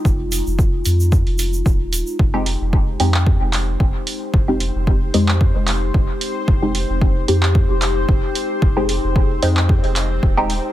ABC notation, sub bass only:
X:1
M:4/4
L:1/16
Q:"Swing 16ths" 1/4=112
K:Fm
V:1 name="Sub bass" clef=bass
F,,,3 F,,,3 F,,3 F,,,3 E,,,3 z | F,,,3 F,,,3 F,,3 F,,,3 F,,, z3 | F,,,3 F,,,3 F,,3 F,,,3 F,,, z3 | F,,,3 F,,,3 F,,3 F,,,3 F,,, z3 |
F,,,3 F,,,3 F,,3 F,,,3 E,,,3 z |]